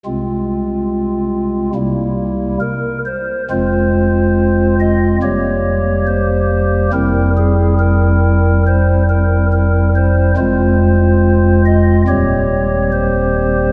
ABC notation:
X:1
M:4/4
L:1/8
Q:1/4=70
K:Fm
V:1 name="Pipe organ"
z6 B c | c3 e d2 c2 | B A B2 c B B c | c3 e d2 c2 |]
V:2 name="Pipe organ" clef=bass
[C,,C,A,CF]4 [C,,C,G,B,=E]2 z2 | [F,,,F,,A,CF]4 [F,,,F,,G,B,G]4 | [F,,,F,,G,C=E]8 | [F,,,F,,A,CF]4 [E,,,E,,G,CG]4 |]